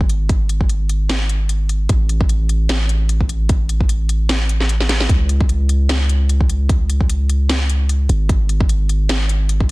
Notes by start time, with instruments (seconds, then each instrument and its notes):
Already playing: 808-style bass G#1
0.01 kick
0.09 closed hi-hat
0.29 kick, closed hi-hat
0.49 closed hi-hat
0.61 kick
0.69 closed hi-hat
0.89 closed hi-hat
1.09 snare, closed hi-hat
1.29 closed hi-hat
1.49 closed hi-hat
1.69 closed hi-hat
1.89 808-style bass A1, kick, closed hi-hat
2.09 closed hi-hat
2.21 kick
2.29 closed hi-hat
2.49 closed hi-hat
2.69 snare, closed hi-hat
2.89 closed hi-hat
3.09 closed hi-hat
3.21 kick
3.29 closed hi-hat
3.49 kick, closed hi-hat
3.69 closed hi-hat
3.81 kick
3.89 closed hi-hat
4.09 closed hi-hat
4.29 snare, closed hi-hat
4.49 closed hi-hat
4.60 snare
4.69 closed hi-hat
4.80 snare
4.89 snare, closed hi-hat
5.00 snare
5.09 808-style bass C#2, kick, closed hi-hat
5.29 closed hi-hat
5.41 kick
5.49 closed hi-hat
5.69 closed hi-hat
5.89 snare, closed hi-hat
6.09 closed hi-hat
6.29 closed hi-hat
6.41 kick
6.49 closed hi-hat
6.69 kick, closed hi-hat
6.90 closed hi-hat
7.01 kick
7.10 closed hi-hat
7.29 closed hi-hat
7.49 snare, closed hi-hat
7.69 closed hi-hat
7.89 closed hi-hat
8.09 808-style bass G#1, closed hi-hat
8.29 kick, closed hi-hat
8.49 closed hi-hat
8.61 kick
8.69 closed hi-hat
8.89 closed hi-hat
9.09 snare, closed hi-hat
9.29 closed hi-hat
9.49 closed hi-hat
9.61 kick